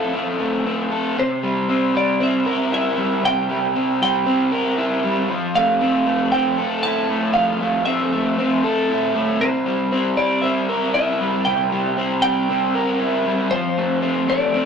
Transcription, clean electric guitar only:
0.00 0.61 F5 medium
1.20 1.97 C5 medium
1.97 2.22 D5 medium
2.23 2.70 E5 medium
2.74 3.25 E5 medium
3.25 3.98 G5 loud
4.03 4.75 G5 medium
5.55 6.29 F5 medium
6.32 6.83 G5 medium
6.83 7.33 A5 loud
7.34 7.85 F5 medium
7.85 9.11 E5 medium
9.41 10.17 C5 medium
10.17 10.44 D5 medium
10.42 10.93 E5 medium
10.94 11.44 E5 loud
11.45 12.21 G5 loud
12.22 12.96 G5 loud
13.51 13.99 C5 loud
14.30 14.65 D5 medium

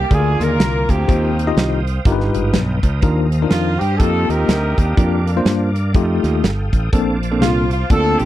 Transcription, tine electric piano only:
0.11 0.85 D3 medium
0.11 0.60 F4 medium
0.11 0.60 G#4 medium
0.11 0.60 A#4 medium
0.11 0.60 D5 medium
1.08 1.82 D#3 medium
1.08 1.30 D#4 medium
1.08 1.30 F4 medium
1.08 1.30 G4 medium
1.08 1.30 C5 medium
1.47 1.79 D#4 medium
1.47 1.79 F4 medium
1.47 1.79 G4 medium
1.47 1.79 D#5 medium
2.06 2.80 G2 medium
2.06 2.55 D#4 medium
2.06 2.54 F4 medium
2.06 2.55 G4 medium
2.06 2.13 A#4 medium
2.12 2.58 B4 medium
3.03 3.77 D#3 medium
3.03 3.25 D4 medium
3.03 3.25 D#4 medium
3.03 3.25 F4 medium
3.03 3.25 A#4 medium
3.42 3.74 D4 medium
3.42 3.74 D#4 medium
3.42 3.74 F4 medium
3.42 3.74 A#4 medium
4.01 4.49 A#3 medium
4.01 4.49 D#4 medium
4.01 4.50 F4 medium
4.01 4.49 G4 medium
4.97 5.19 A#3 medium
4.97 5.19 D4 medium
4.97 5.19 F4 medium
4.97 5.19 A#4 medium
5.37 5.68 A#3 medium
5.37 5.69 D4 medium
5.37 5.68 F4 medium
5.37 5.69 C5 medium
5.96 6.44 A3 medium
5.96 6.44 D#4 medium
5.96 6.44 F4 medium
5.96 6.44 G4 medium
6.93 7.67 A#2 medium
6.93 7.15 A#3 medium
6.93 7.15 C4 medium
6.93 7.15 D4 medium
6.93 7.15 A4 medium
7.31 7.63 A#3 medium
7.31 7.63 C4 medium
7.31 7.63 D4 medium
7.31 7.63 A4 medium
7.91 8.25 A#3 medium
7.91 8.25 C4 medium
7.91 8.25 D4 medium
7.91 8.25 F4 medium

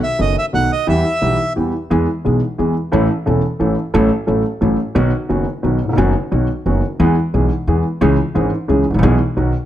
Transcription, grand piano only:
0.18 0.33 F#1 soft
0.18 0.33 F#2 soft
0.18 0.33 D#3 soft
0.18 0.33 A3 soft
0.18 0.33 B3 soft
0.18 0.33 F#4 soft
0.53 0.68 B1 soft
0.53 0.67 B2 soft
0.53 0.67 D#3 soft
0.53 0.67 A3 soft
0.53 0.68 B3 soft
0.53 0.68 F#4 soft
0.87 1.02 E2 medium
0.87 1.02 E3 medium
0.87 1.02 G3 soft
0.87 1.02 B3 soft
0.87 1.02 G4 medium
1.22 1.36 B1 soft
1.22 1.36 B2 soft
1.22 1.36 E3 soft
1.22 1.36 G3 soft
1.22 1.36 B3 soft
1.22 1.36 G4 soft
1.56 1.71 E2 soft
1.56 1.71 E3 soft
1.56 1.71 G3 soft
1.56 1.71 B3 soft
1.56 1.71 G4 soft
1.90 2.05 E2 medium
1.90 2.05 E3 medium
1.90 2.05 G#3 medium
1.90 2.05 B3 medium
1.90 2.05 G#4 medium
2.25 2.39 B1 soft
2.25 2.39 B2 soft
2.25 2.39 E3 soft
2.25 2.39 G#3 soft
2.25 2.39 B3 soft
2.25 2.39 G#4 soft
2.58 2.73 E2 soft
2.58 2.73 E3 medium
2.58 2.73 G#3 soft
2.58 2.73 B3 soft
2.58 2.73 G#4 soft
2.92 3.07 A1 medium
2.92 3.07 A2 medium
2.92 3.06 E3 medium
2.92 3.06 A3 medium
2.92 3.07 C#4 medium
2.92 3.07 A4 medium
3.26 3.40 E1 soft
3.26 3.40 E2 medium
3.26 3.40 E3 soft
3.26 3.40 A3 soft
3.26 3.40 C#4 soft
3.26 3.41 A4 medium
3.59 3.74 A1 medium
3.59 3.74 A2 soft
3.59 3.74 E3 soft
3.59 3.74 A3 soft
3.59 3.74 C#4 soft
3.59 3.74 A4 soft
3.94 4.08 A1 medium
3.94 4.08 A2 medium
3.94 4.08 F#3 medium
3.94 4.08 A3 medium
3.94 4.08 C#4 medium
3.94 4.08 A4 medium
4.27 4.42 A1 soft
4.27 4.42 A2 soft
4.27 4.42 F#3 soft
4.27 4.42 A3 soft
4.27 4.42 C#4 soft
4.27 4.42 A4 medium
4.61 4.76 A1 medium
4.61 4.76 A2 soft
4.61 4.76 F#3 soft
4.61 4.76 A3 soft
4.61 4.76 C#4 soft
4.61 4.76 A4 soft
4.95 5.10 B1 medium
4.95 5.10 B2 medium
4.95 5.10 D#3 medium
4.95 5.10 F#3 medium
4.95 5.10 B3 medium
4.95 5.10 F#4 medium
5.29 5.44 F#1 soft
5.29 5.44 F#2 soft
5.29 5.44 D#3 soft
5.29 5.44 F#3 soft
5.29 5.44 B3 soft
5.29 5.44 F#4 soft
5.63 5.78 B1 soft
5.63 5.78 B2 medium
5.63 5.78 D#3 soft
5.63 5.78 F#3 soft
5.63 5.78 B3 soft
5.63 5.78 F#4 soft
5.85 5.89 D#1 soft
5.89 5.94 E1 medium
5.93 5.98 F1 medium
5.93 6.12 D#3 medium
5.93 6.12 F#3 medium
5.93 6.12 B3 medium
5.97 6.12 F#1 medium
5.97 6.12 F#2 medium
5.97 6.12 F#4 medium
6.31 6.46 B1 soft
6.31 6.46 B2 medium
6.31 6.46 D#3 soft
6.31 6.46 F#3 soft
6.31 6.46 B3 soft
6.31 6.47 F#4 soft
6.66 6.81 F#1 soft
6.66 6.81 F#2 soft
6.66 6.80 D#3 soft
6.66 6.81 F#3 soft
6.66 6.81 B3 soft
6.66 6.81 F#4 soft
7.00 7.14 E2 medium
7.00 7.14 E3 medium
7.00 7.14 G#3 medium
7.00 7.14 B3 medium
7.00 7.14 G#4 medium
7.34 7.48 B1 medium
7.34 7.48 B2 soft
7.34 7.48 E3 soft
7.34 7.48 G#3 soft
7.34 7.48 B3 soft
7.34 7.48 G#4 medium
7.68 7.82 E2 soft
7.68 7.82 E3 medium
7.68 7.82 G#3 soft
7.68 7.82 B3 soft
7.68 7.82 G#4 medium
8.01 8.16 C#2 medium
8.01 8.15 C#3 medium
8.01 8.15 E3 medium
8.01 8.16 G#3 medium
8.01 8.16 C#4 medium
8.01 8.16 G#4 medium
8.34 8.49 G#1 medium
8.34 8.49 G#2 medium
8.34 8.49 E3 soft
8.34 8.49 G#3 soft
8.34 8.49 C#4 soft
8.34 8.49 G#4 medium
8.68 8.83 C#2 soft
8.68 8.83 C#3 medium
8.68 8.83 E3 soft
8.68 8.83 G#3 soft
8.68 8.83 C#4 soft
8.68 8.83 G#4 medium
8.90 8.94 G#1 soft
8.94 8.99 A1 medium
8.99 9.03 A#1 medium
9.03 9.17 B1 medium
9.03 9.17 B2 medium
9.03 9.17 E3 medium
9.03 9.17 G#3 medium
9.03 9.17 B3 medium
9.03 9.18 G#4 medium
9.37 9.51 B1 medium
9.37 9.51 B2 soft
9.37 9.51 D#3 soft
9.37 9.51 F#3 soft
9.37 9.51 B3 soft
9.37 9.52 F#4 soft

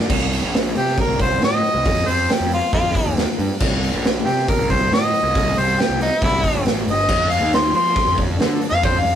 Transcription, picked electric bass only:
0.09 0.39 C2 medium
0.43 0.72 A#1 medium
0.76 0.95 C3 medium
1.08 1.37 C2 medium
1.41 1.61 A2 medium
1.75 1.84 C2 medium
1.86 2.05 F2 medium
2.06 2.26 F2 medium
2.40 2.59 F2 medium
2.73 2.92 F2 loud
3.06 3.25 D#2 medium
3.39 3.48 G2 medium
3.61 3.90 C2 loud
3.93 4.22 A#1 medium
4.25 4.45 C3 medium
4.58 4.88 C2 medium
4.91 5.10 A2 medium
5.23 5.52 C2 medium
5.57 5.76 C2 loud
5.89 6.08 C2 medium
6.22 6.41 C2 loud
6.54 6.64 A#1 medium
6.65 6.85 A1 medium
6.86 7.06 G1 medium
7.09 7.38 F2 medium
7.41 7.70 D#2 loud
7.73 7.93 F3 medium
8.07 8.36 F2 medium
8.39 8.59 D3 medium
8.71 9.01 F2 medium
9.04 9.15 F2 medium

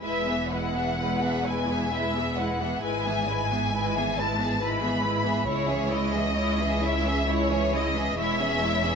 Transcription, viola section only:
0.01 0.25 G#3 soft
0.01 0.25 E4 soft
0.27 0.52 E3 soft
0.27 0.51 B3 soft
0.52 0.76 G#3 soft
0.52 0.76 E4 soft
0.75 0.99 E3 soft
0.75 0.99 B3 soft
0.98 1.21 G#3 soft
0.98 1.21 E4 soft
1.22 1.46 E3 soft
1.22 1.46 B3 soft
1.45 1.69 G#3 soft
1.45 1.69 E4 soft
1.69 1.92 E3 soft
1.69 1.92 B3 soft
1.91 2.13 G#3 soft
1.91 2.13 E4 soft
2.15 2.38 E3 soft
2.15 2.37 B3 soft
2.37 2.60 G#3 soft
2.37 2.61 E4 soft
2.59 2.83 E3 soft
2.59 2.83 B3 soft
2.82 3.04 G#3 soft
2.82 3.04 E4 soft
3.05 3.29 E3 soft
3.05 3.29 B3 soft
3.28 3.52 G#3 soft
3.28 3.52 E4 soft
3.51 3.74 E3 soft
3.51 3.74 B3 soft
3.74 3.95 G#3 soft
3.74 3.95 E4 soft
3.96 4.18 E3 soft
3.96 4.18 B3 soft
4.19 4.40 G#3 soft
4.19 4.40 E4 soft
4.39 4.61 E3 soft
4.39 4.61 B3 soft
4.62 4.82 G#3 soft
4.62 4.82 E4 soft
4.83 5.04 E3 soft
4.83 5.05 B3 soft
5.03 5.26 G#3 soft
5.03 5.26 E4 soft
5.24 5.48 E3 soft
5.24 5.48 B3 soft
5.47 5.69 G#3 soft
5.47 5.69 E4 soft
5.70 5.93 E3 soft
5.70 5.93 C#4 soft
5.92 6.15 G#3 soft
5.92 6.15 E4 soft
6.14 6.38 E3 soft
6.14 6.37 C#4 soft
6.37 6.59 G#3 soft
6.37 6.59 E4 soft
6.59 6.83 E3 soft
6.59 6.83 C#4 soft
6.82 7.06 G#3 soft
6.82 7.06 E4 soft
7.05 7.28 E3 soft
7.05 7.29 C#4 soft
7.27 7.49 G#3 soft
7.27 7.49 E4 medium
7.51 7.74 E3 soft
7.51 7.74 C#4 soft
7.73 7.96 G#3 soft
7.73 7.96 E4 soft
7.96 8.18 E3 soft
7.96 8.18 C#4 soft
8.19 8.39 G#3 soft
8.19 8.39 E4 soft
8.41 8.62 E3 soft
8.41 8.63 C#4 soft
8.62 8.84 G#3 soft
8.62 8.84 E4 soft
8.83 8.95 E3 soft
8.83 8.95 C#4 soft

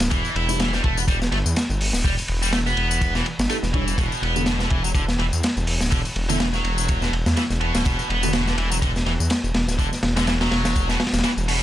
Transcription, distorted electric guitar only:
0.11 0.34 E3 medium
0.35 0.59 E4 medium
0.60 0.72 E3 medium
0.73 0.83 G3 medium
0.84 0.96 A3 medium
0.98 1.01 B3 medium
1.08 1.16 G3 medium
1.32 1.37 A3 medium
2.05 2.13 G3 medium
2.43 2.52 G3 medium
2.53 2.58 A3 medium
2.67 3.14 B3 medium
3.15 3.24 E3 loud
3.50 3.55 A3 medium
3.74 3.97 E3 medium
3.98 4.21 B2 medium
4.22 4.46 B3 medium
4.47 4.59 B2 loud
4.60 4.70 D3 medium
4.71 4.83 E3 medium
4.84 4.88 F#3 medium
4.95 5.03 D3 medium
5.19 5.24 E3 medium
5.91 6.00 D3 medium
6.29 6.39 D3 medium
6.40 6.45 E3 medium
6.53 7.01 F#3 medium
7.02 7.12 B2 loud
7.37 7.42 E3 medium
7.61 7.84 B2 medium
7.85 8.08 B2 medium
8.09 8.33 B3 medium
8.34 8.46 B2 loud
8.47 8.57 D3 medium
8.58 8.70 E3 medium
8.72 8.75 F#3 medium
8.82 8.90 D3 medium
9.06 9.11 E3 medium
9.79 9.87 D3 medium
10.17 10.26 D3 medium
10.27 10.32 E3 medium
10.41 10.88 F#3 medium
10.89 10.99 B2 loud
11.24 11.29 E3 medium
11.48 11.63 B2 medium

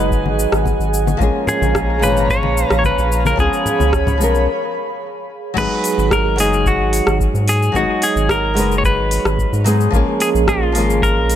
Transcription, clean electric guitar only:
0.00 0.90 B4 medium
1.49 2.04 G#4 medium
2.03 2.30 B4 loud
2.31 2.74 C#5 loud
2.79 2.85 C#5 medium
2.86 3.26 B4 loud
3.27 3.40 A#4 medium
3.40 4.44 G#4 medium
5.58 6.13 B4 loud
6.13 6.40 A#4 loud
6.40 6.67 G#4 loud
6.67 7.17 F#4 medium
7.49 7.76 G#4 medium
7.76 8.04 F#4 medium
8.03 8.30 G#4 medium
8.31 8.75 A#4 loud
8.78 8.85 C#5 medium
8.85 9.63 B4 loud
10.22 10.29 G#4 medium
10.49 11.04 F4 medium
11.03 11.36 A#4 loud

